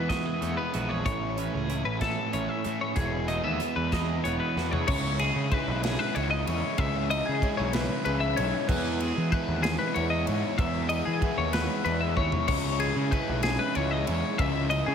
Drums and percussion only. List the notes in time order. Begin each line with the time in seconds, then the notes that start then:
0.10 kick, snare, closed hi-hat
0.42 closed hi-hat
0.74 closed hi-hat
1.06 kick, closed hi-hat
1.38 closed hi-hat
1.70 closed hi-hat
2.01 kick, snare, closed hi-hat
2.33 closed hi-hat
2.65 closed hi-hat
2.96 kick, closed hi-hat
3.28 closed hi-hat
3.60 closed hi-hat
3.92 kick, snare, closed hi-hat
4.25 closed hi-hat
4.57 snare
4.73 floor tom
4.88 kick, crash
5.19 ride
5.52 kick, ride
5.84 snare, ride
6.16 ride
6.47 ride
6.78 kick, ride
7.11 ride
7.42 kick, ride
7.73 snare, ride
8.05 ride
8.37 ride
8.69 kick, crash
9.00 ride
9.32 kick, ride
9.64 snare, ride
9.96 ride
10.27 ride
10.59 kick, ride
10.90 ride
11.22 kick, ride
11.53 snare, ride
11.86 ride
12.17 kick
12.32 floor tom
12.48 kick, crash
12.80 ride
13.12 kick, ride
13.43 snare, ride
13.75 ride
14.07 ride
14.39 kick, ride
14.71 ride